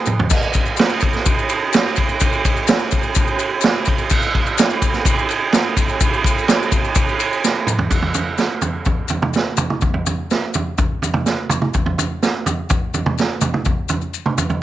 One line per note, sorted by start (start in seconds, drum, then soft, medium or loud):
0.06 mid tom loud
0.06 maracas medium
0.19 floor tom loud
0.30 kick loud
0.30 crash medium
0.30 maracas medium
0.42 maracas soft
0.54 kick medium
0.54 ride medium
0.54 maracas medium
0.66 maracas soft
0.77 snare loud
0.77 ride loud
0.77 maracas medium
0.89 maracas soft
1.00 kick medium
1.00 ride medium
1.00 maracas medium
1.13 snare soft
1.13 maracas soft
1.26 kick loud
1.26 ride loud
1.26 maracas medium
1.39 maracas soft
1.49 ride medium
1.49 maracas medium
1.73 snare loud
1.73 ride loud
1.73 maracas loud
1.96 kick medium
1.96 ride medium
1.96 maracas medium
2.09 maracas soft
2.20 kick loud
2.20 ride medium
2.20 maracas medium
2.33 maracas soft
2.45 kick medium
2.45 ride medium
2.45 maracas medium
2.57 maracas soft
2.67 snare loud
2.67 ride medium
2.67 maracas loud
2.79 maracas soft
2.91 kick medium
2.91 ride medium
2.91 maracas medium
3.03 maracas soft
3.15 kick loud
3.15 ride medium
3.15 maracas loud
3.27 maracas soft
3.39 ride medium
3.39 maracas medium
3.61 snare loud
3.61 ride medium
3.61 maracas medium
3.85 kick medium
3.85 ride medium
3.85 maracas medium
3.98 maracas soft
4.10 kick loud
4.10 crash medium
4.10 maracas medium
4.22 maracas soft
4.35 kick medium
4.35 ride medium
4.46 maracas soft
4.58 snare loud
4.58 ride loud
4.58 maracas loud
4.70 maracas soft
4.82 kick medium
4.82 ride medium
4.82 maracas medium
4.94 snare soft
4.94 maracas soft
5.05 kick loud
5.05 ride medium
5.05 maracas loud
5.19 maracas soft
5.29 ride medium
5.29 maracas medium
5.52 snare loud
5.52 ride loud
5.52 maracas loud
5.77 kick medium
5.77 ride medium
5.77 maracas medium
5.89 maracas soft
6.01 kick medium
6.01 ride loud
6.01 maracas loud
6.14 maracas soft
6.24 kick medium
6.24 ride medium
6.24 maracas medium
6.38 maracas soft
6.48 snare loud
6.48 ride loud
6.48 maracas loud
6.63 maracas soft
6.72 kick medium
6.72 ride medium
6.72 maracas medium
6.84 maracas soft
6.95 kick loud
6.95 ride loud
6.95 maracas loud
7.09 maracas soft
7.20 ride medium
7.20 maracas medium
7.33 maracas soft
7.44 snare medium
7.44 maracas loud
7.67 mid tom medium
7.67 maracas medium
7.79 floor tom medium
7.90 kick medium
7.90 floor tom medium
7.90 crash medium
7.90 maracas medium
8.02 floor tom medium
8.14 floor tom medium
8.14 maracas medium
8.38 snare medium
8.38 maracas medium
8.62 floor tom medium
8.62 maracas medium
8.85 kick loud
8.85 floor tom medium
8.85 maracas medium
9.08 floor tom medium
9.08 maracas medium
9.22 floor tom medium
9.22 mid tom medium
9.34 snare medium
9.34 maracas medium
9.57 floor tom medium
9.57 mid tom medium
9.57 maracas medium
9.70 mid tom medium
9.81 kick medium
9.81 floor tom medium
9.81 maracas medium
9.94 floor tom medium
10.06 floor tom medium
10.06 maracas medium
10.31 snare medium
10.31 maracas medium
10.54 floor tom medium
10.54 maracas medium
10.78 kick loud
10.78 floor tom medium
10.78 maracas medium
11.02 floor tom medium
11.02 maracas medium
11.14 floor tom medium
11.14 mid tom medium
11.26 snare medium
11.26 maracas medium
11.49 floor tom medium
11.49 mid tom medium
11.49 maracas medium
11.62 mid tom medium
11.74 kick medium
11.74 floor tom medium
11.74 maracas medium
11.86 floor tom medium
11.98 floor tom medium
11.98 maracas medium
12.23 snare medium
12.23 maracas medium
12.46 floor tom medium
12.46 maracas medium
12.70 kick loud
12.70 floor tom medium
12.70 maracas medium
12.94 floor tom medium
12.94 maracas medium
13.06 floor tom medium
13.06 mid tom medium
13.18 snare medium
13.18 maracas medium
13.41 floor tom medium
13.41 mid tom medium
13.41 maracas medium
13.54 mid tom medium
13.65 kick medium
13.65 floor tom medium
13.65 maracas medium
13.89 floor tom medium
13.89 maracas medium
14.01 maracas soft
14.14 maracas medium
14.26 mid tom medium
14.38 floor tom medium
14.38 maracas medium
14.50 floor tom medium
14.50 maracas soft